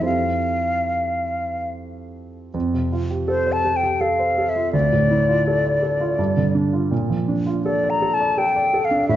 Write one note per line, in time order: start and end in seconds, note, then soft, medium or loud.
0.00 2.48 F2 soft
0.00 2.49 E4 soft
0.00 2.49 G4 soft
0.00 2.50 A4 soft
0.00 2.50 C5 soft
0.05 1.71 F5 soft
2.54 4.69 F2 soft
2.74 3.03 C3 soft
2.93 3.21 F4 soft
3.10 3.39 G4 soft
3.28 3.57 A4 soft
3.28 3.54 C5 medium
3.47 3.75 C5 soft
3.52 3.78 A5 medium
3.65 3.93 A4 soft
3.76 4.02 G5 medium
3.83 4.12 G4 soft
4.01 4.30 A4 soft
4.01 4.50 F5 medium
4.19 4.48 C5 soft
4.38 4.67 A4 soft
4.49 4.72 E5 medium
4.56 4.74 F4 soft
4.73 6.14 D2 soft
4.73 6.51 D5 medium
4.93 5.21 A2 soft
5.11 5.39 E4 soft
5.29 5.57 F4 soft
5.47 5.76 A4 soft
5.66 5.94 D5 soft
5.83 6.11 A4 soft
6.00 6.18 F4 soft
6.19 6.89 G2 soft
6.37 6.66 D3 soft
6.55 6.84 D4 soft
6.73 6.91 F4 soft
6.91 9.05 A#2 soft
7.10 7.39 F3 soft
7.28 7.58 D4 soft
7.46 7.76 F4 soft
7.65 7.95 A4 soft
7.65 7.91 D5 medium
7.84 8.13 D5 soft
7.90 8.15 A#5 medium
8.02 8.30 A4 soft
8.14 8.40 A5 medium
8.21 8.48 D5 soft
8.38 8.66 A4 soft
8.38 8.86 G5 medium
8.56 8.84 D5 soft
8.74 9.02 A4 soft
8.85 9.08 F5 medium
8.91 9.09 D4 soft
9.09 9.16 A2 medium
9.09 9.16 E5 medium